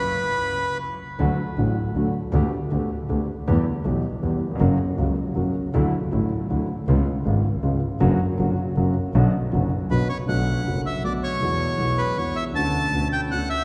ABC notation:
X:1
M:3/4
L:1/16
Q:1/4=159
K:Bm
V:1 name="Bandoneon"
B8 z4 | z12 | z12 | z12 |
z12 | z12 | z12 | z12 |
z8 B2 c2 | f6 e2 d2 c2- | c6 B2 c2 e2 | a6 g2 f2 e2 |]
V:2 name="Grand piano" clef=bass
z12 | [D,,D,F,A,F]2 z2 [A,,,A,,D,F,A,F]2 z2 [D,,D,F,A,F]2 z2 | [D,,D,A,B,G]2 z2 [D,,D,A,B,G]2 z2 [D,,D,A,B,G]2 z2 | [E,,E,G,B,G]2 z2 [B,,,B,,E,G,B,G]2 z2 [E,,E,G,B,G]2 z/2 ^D,,/2 E,,/2 ^E,,/2 |
[F,,C,F,^A,F]2 z2 [C,,C,F,A,F]2 z2 [F,,C,F,A,F]2 z2 | [D,,D,F,A,E]2 z2 [A,,,A,,D,F,A,E]2 z2 [D,,D,F,A,E]2 z2 | [C,,C,^G,B,^E]2 z2 [^G,,,^G,,C,G,B,E]2 z2 [C,,C,G,B,E]2 z2 | [F,,D,F,B,F]2 z2 [F,,D,F,B,F]2 z2 [F,,C,F,^A,F]2 z2 |
[B,,,B,,D,F,B,F]2 z2 [F,,,F,,D,F,B,F]2 z2 [B,,,B,,D,F,B,F]2 z2 | [B,,,B,,D,A,B,F]4 [F,,,F,,D,A,B,F]4 [B,,,B,,D,A,B,F]4 | [E,,E,^G,B,F]4 [B,,,B,,E,G,B,F]4 [E,,E,G,B,F]4 | [D,,D,B,CF]4 [D,,D,B,CF]4 [D,,D,B,CF]4 |]
V:3 name="Double bass" clef=bass
z12 | D,,2 z2 A,,,2 z2 D,,2 z2 | D,,2 z2 D,,2 z2 D,,2 z2 | E,,2 z2 B,,,2 z2 E,,2 z2 |
F,,,2 z2 C,,2 z2 F,,,2 z2 | D,,2 z2 A,,,2 z2 D,,2 z2 | C,,2 z2 ^G,,,2 z2 C,,2 z2 | F,,,2 z2 F,,,2 z2 F,,,2 z2 |
B,,,2 z2 F,,,2 z2 B,,,2 z2 | B,,,4 F,,,4 B,,,4 | E,,4 B,,,4 E,,4 | D,,4 D,,4 D,,4 |]